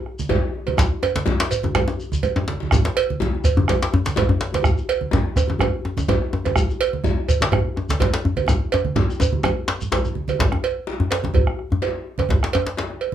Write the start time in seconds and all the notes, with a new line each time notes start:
0.06 bombo rim
0.19 high conga, shekere
0.29 bombo rim, cowbell, djembe slap, high conga, djembe bass, low conga
0.43 bombo rim
0.53 djembe slap, high conga
0.67 cowbell, djembe tone, high conga
0.77 bombo rim, bombo low, djembe slap, djembe bass, low conga, shekere
0.79 djembe slap
1.03 cowbell, djembe tone
1.15 djembe slap, high conga, shekere
1.26 bombo rim, djembe slap, djembe tone, djembe bass, low conga
1.40 djembe slap, high conga, shekere
1.51 cowbell, shekere
1.63 high conga, djembe tone
1.75 bombo rim, cowbell, djembe slap, djembe bass, low conga
1.88 djembe tone, shekere
1.99 djembe slap, high conga, shekere
2.12 bombo low, djembe slap, high conga, shekere
2.23 bombo rim, cowbell, high conga, low conga, djembe bass, shekere
2.36 djembe tone, djembe bass, low conga
2.48 djembe slap, high conga
2.60 djembe slap, high conga
2.71 bombo rim, bombo low, djembe tone, djembe bass, low conga, shekere
2.85 djembe slap, shekere
2.96 bombo rim, cowbell
3.09 djembe slap, high conga
3.20 djembe slap, djembe bass, low conga, shekere
3.35 high conga
3.44 bombo rim, bombo low, cowbell, shekere
3.57 djembe slap, djembe tone, high conga, djembe bass
3.68 bombo rim, cowbell, djembe slap, djembe bass, low conga
3.82 djembe slap
3.92 bombo rim, djembe bass
4.05 djembe slap, high conga, shekere
4.16 bombo rim, cowbell, djembe slap, high conga, djembe bass, low conga
4.28 bombo rim, djembe bass
4.41 djembe slap, high conga
4.53 cowbell, djembe slap, djembe tone, high conga
4.63 bombo rim, bombo low, djembe bass, low conga, shekere
4.76 djembe slap, shekere
4.89 bombo rim, cowbell
5.00 djembe slap, high conga
5.11 djembe slap, djembe tone, djembe bass, low conga, shekere
5.25 high conga
5.36 bombo rim, bombo low, cowbell, djembe tone, shekere
5.47 djembe slap, djembe tone, high conga
5.50 djembe tone
5.59 bombo rim, cowbell, djembe tone, djembe bass, low conga
5.85 bombo rim, djembe tone
5.97 bombo low, high conga, djembe tone, shekere
6.08 bombo rim, cowbell, djembe slap, high conga, djembe tone, low conga, djembe bass
6.22 bombo rim
6.33 djembe slap, high conga, djembe tone
6.44 cowbell, djembe tone, high conga
6.46 djembe tone
6.56 bombo rim, bombo low, djembe bass, low conga, shekere
6.69 djembe slap, shekere
6.81 bombo rim, cowbell
6.93 djembe slap, high conga
7.04 djembe slap, low conga, djembe bass, shekere
7.17 high conga
7.28 bombo rim, bombo low, cowbell, shekere
7.41 djembe slap, djembe tone, high conga
7.42 djembe slap
7.52 bombo rim, cowbell, low conga, djembe bass
7.76 bombo rim, djembe tone
7.89 bombo low, djembe slap, high conga, shekere
8.00 bombo rim, cowbell, djembe slap, high conga, djembe bass, low conga
8.02 djembe slap
8.13 bombo rim, djembe slap
8.25 djembe slap, high conga, djembe bass
8.37 cowbell, high conga, djembe tone
8.48 bombo rim, bombo low, djembe slap, high conga, djembe tone, low conga, djembe bass, shekere
8.60 high conga
8.72 cowbell, djembe slap, djembe tone
8.85 high conga
8.96 djembe slap, high conga, djembe tone, low conga, djembe bass
9.09 high conga, shekere
9.20 bombo low, cowbell, djembe tone, shekere
9.32 high conga, djembe tone
9.43 bombo rim, cowbell, djembe tone, djembe bass, low conga, shekere
9.57 djembe slap
9.68 djembe slap
9.80 djembe slap, low conga, shekere
9.92 cowbell, djembe slap, djembe bass, low conga, shekere
10.05 djembe slap, low conga, shekere
10.15 high conga
10.28 cowbell, high conga, djembe tone, shekere
10.39 bombo low, djembe slap, high conga, djembe bass, low conga
10.52 bombo rim, djembe tone
10.63 cowbell, djembe slap
10.87 djembe slap
11.00 djembe slap, high conga, djembe bass
11.11 cowbell, djembe slap
11.23 djembe tone, high conga
11.25 djembe tone
11.34 bombo low, cowbell, high conga, low conga, djembe bass
11.47 bombo rim, djembe slap
11.59 bombo rim
11.70 high conga, djembe bass
11.82 cowbell, djembe slap, high conga
12.18 cowbell, high conga, djembe tone
12.29 bombo low, djembe slap, high conga, low conga, djembe bass
12.43 bombo rim, djembe slap
12.53 bombo rim, cowbell, djembe slap, djembe tone
12.66 djembe slap
12.77 djembe slap
12.90 djembe slap, high conga
13.01 cowbell, djembe slap